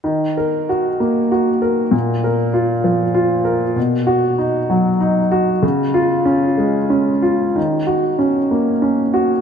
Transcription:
\new Staff \with { instrumentName = "Upright piano" } { \time 3/4 \key ees \minor \tempo 4 = 96 << { r8 bes'4 r4. | r8 bes'4 r4. | r8 fis'4 r4. | r8 f'4 r4. |
r8 ges'4 r4. | } \\ { ees4 ges'8 bes8 ges'8 bes'8 | bes,4 f'8 f8 f'8 bes'8 | b,4 dis'8 fis8 dis'8 fis'8 | des4 des'8 aes8 des'8 f'8 |
ees4 des'8 bes8 des'8 ges'8 | } >> }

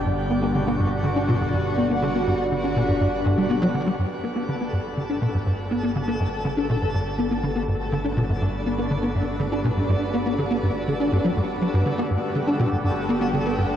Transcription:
<<
  \new Staff \with { instrumentName = "Synth texture" } { \time 4/4 \key g \major \tempo 4 = 122 r1 | r1 | <a a'>1~ | <a a'>1 |
d'1~ | d'1 | a'1 | }
  \new Staff \with { instrumentName = "Analog synth pad" } { \time 4/4 \key g \major << { fis'1~ | fis'1 | g'1~ | g'1 |
b'1~ | b'1 | g'1 | } \\ { <b, d g d'>1~ | <b, d g d'>1 | <d g b fis'>1~ | <d g b fis'>1~ |
<d g b fis'>1~ | <d g b fis'>1~ | <d g b fis'>1 | } >> }
  \new Staff \with { instrumentName = "Analog synth bass" } { \clef bass \time 4/4 \key g \major g,16 r16 b16 b16 d16 b16 g,16 r16 d16 d'16 b,16 g,16 g,16 r16 b16 b16 | d16 b16 g,16 r16 d16 d'16 b,16 g,16 g,16 r16 g,16 g16 b16 fis16 d16 g16 | g,16 r16 b16 b16 d16 b16 g,16 r16 d16 d'16 b,16 g,16 g,16 r16 b16 b16 | d16 b16 g,16 r16 d16 d'16 b,16 g,16 g,16 r16 b16 b16 d16 b16 g,16 r16 |
d16 d'16 b,16 g,16 g,16 r16 b16 b16 d16 b16 g,16 r16 d16 d'16 b,16 g,16 | g,16 r16 b16 b16 d16 b16 g,16 r16 d16 d'16 g,16 fis16 g,16 r16 fis16 g,16 | d16 b16 g,16 r16 d16 d'16 b,16 g,16 g,16 r16 b16 b16 d16 b16 g,16 r16 | }
  \new Staff \with { instrumentName = "Analog synth bass" } { \clef bass \time 4/4 \key g \major g,,1~ | g,,1 | g,,1~ | g,,1~ |
g,,1~ | g,,1 | g,,1 | }
>>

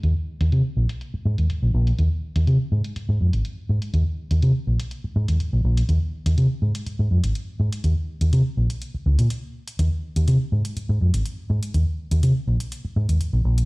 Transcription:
<<
  \new Staff \with { instrumentName = "Fingered electric bass" } { \clef bass \time 4/4 \key c \phrygian \tempo 4 = 123 ees,16 r8 ees,16 c16 r16 bes,,16 r8. aes,16 ees,16 r16 bes,,16 bes,,16 r16 | ees,16 r8 ees,16 c16 r16 aes,16 r8 aes,16 f,16 aes,,16 r8 aes,16 r16 | ees,16 r8 ees,16 c16 r16 bes,,16 r8. aes,16 ees,16 r16 bes,,16 bes,,16 r16 | ees,16 r8 ees,16 c16 r16 aes,16 r8 aes,16 f,16 aes,,16 r8 aes,16 r16 |
ees,16 r8 ees,16 c16 r16 bes,,16 r8. des,16 bes,16 r4 | ees,16 r8 ees,16 c16 r16 aes,16 r8 aes,16 f,16 aes,,16 r8 aes,16 r16 | ees,16 r8 ees,16 c16 r16 bes,,16 r8. aes,16 ees,16 r16 bes,,16 bes,,16 r16 | }
  \new DrumStaff \with { instrumentName = "Drums" } \drummode { \time 4/4 hh8. hh16 hh8. hh16 hh8. hh16 hh8. hh16 | hh8. hh16 hh8. hh16 hh8. hh16 hh8. hh16 | hh8. hh16 hh8. hh16 hh8. hh16 hh8. hh16 | hh8. hh16 hh8. hh16 hh8. hh16 hh8. hh16 |
hh8. hh16 hh8. hh16 hh8. hh16 hh8. hh16 | hh8. hh16 hh8. hh16 hh8. hh16 hh8. hh16 | hh8. hh16 hh8. hh16 hh8. hh16 hh8. hh16 | }
>>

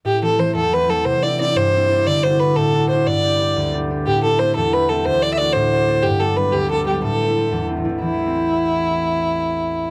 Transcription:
<<
  \new Staff \with { instrumentName = "Fiddle" } { \time 6/8 \key a \dorian \tempo 4. = 121 g'8 a'8 c''8 a'8 b'8 a'8 | c''8 d''8 d''8 c''4. | d''8 c''8 b'8 a'4 c''8 | d''2 r4 |
g'8 a'8 c''8 a'8 b'8 a'8 | c''8 d''16. e''32 d''8 c''4. | g'8 a'8 b'8 g'8 a'8 g'8 | a'2 r4 |
e'2.~ | e'2. | }
  \new Staff \with { instrumentName = "Harp" } { \time 6/8 \key a \dorian a,8 <e a c'>8 <e a c'>8 e,8 <e a c'>8 <e a c'>8 | c8 <c' d' e'>8 <c' d' e'>8 g,8 <c' d' e'>8 <c' d' e'>8 | d8 <d' e' fis'>8 <d' e' fis'>8 a,8 <d' e' fis'>8 <d' e' fis'>8 | g,8 <b d' g'>8 <b d' g'>8 d,8 <b d' g'>8 <b d' g'>8 |
a,8 <a c' e'>8 <a c' e'>8 e,8 <a c' e'>8 <a c' e'>8 | d,8 <a d' fis'>8 <a d' fis'>8 a,8 <a d' fis'>8 <a d' fis'>8 | g,8 <g b d'>8 <g b d'>8 d,8 <g b d'>8 <g b d'>8 | a,8 <a c' e'>8 <a c' e'>8 e,8 <a c' e'>8 <a c' e'>8 |
<a,, e, e a c'>2.~ | <a,, e, e a c'>2. | }
>>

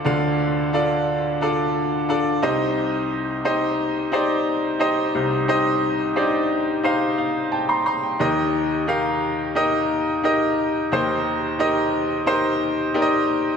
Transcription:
<<
  \new Staff \with { instrumentName = "Upright piano" } { \time 4/4 \key c \dorian \tempo 4 = 88 << { r1 | r1 | r2 r8 f''8 <g'' a''>16 <bes'' c'''>16 <bes'' c'''>16 g''16~ | g''16 r2. r8. |
r1 | } \\ { <d' f' a' f''>4 <d' f' a' d''>4 <d' f' a' d''>4 <d' f' a' d''>8 <ees' g' c'' ees''>8~ | <ees' g' c'' ees''>8. r16 <ees' g' c'' ees''>4 <ees' g' c'' d''>4 <ees' g' c'' ees''>4 | <ees' g' c'' ees''>4 <d' ees' g' c'' d''>4 <ees' g' c'' f''>4 r4 | <ees' g' bes' ees''>4 <ees' g' bes' f''>4 <ees' g' bes' ees''>4 <ees' g' bes' ees''>4 |
<ees' g' bes' c''>4 <ees' g' bes' ees''>4 <ees' g' bes' c''>4 <ees' g' bes' d'' ees''>4 | } >> }
  \new Staff \with { instrumentName = "Upright piano" } { \clef bass \time 4/4 \key c \dorian <d, d>2.~ <d, d>8 <c, c>8~ | <c, c>2.~ <c, c>8 <c, c>8~ | <c, c>2.~ <c, c>8 r8 | <ees, ees>1 |
<ees, ees>1 | }
>>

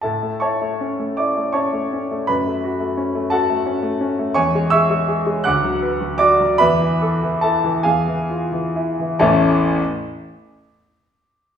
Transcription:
<<
  \new Staff \with { instrumentName = "Grand piano" } { \time 6/8 \key a \major \tempo 4. = 52 <a' e'' a''>8 <cis'' a'' cis'''>4 <d'' d'''>8 <cis'' a'' cis'''>4 | <b' b''>4. <a' fis'' a''>4. | <cis'' gis'' cis'''>8 <e'' cis''' e'''>4 <fis'' d''' fis'''>4 <d'' d'''>8 | <b' e'' b''>4 <a' a''>8 <gis' f'' gis''>4. |
<a,, e, e a cis' e' a''>8 r2 r8 | }
  \new Staff \with { instrumentName = "Grand piano" } { \time 6/8 \key a \major a,16 a16 e'16 a16 cis'16 a16 e'16 a16 cis'16 a16 cis'16 a16 | fis,16 a16 fis'16 a16 cis'16 a16 fis'16 a16 cis'16 a16 cis'16 a16 | e,16 gis16 gis'16 gis16 gis'16 gis16 d,16 fis16 b'16 fis16 fis'16 fis16 | e,16 e16 a'16 e16 e'16 e16 e,16 e16 f'16 e16 e'16 e16 |
r2. | }
>>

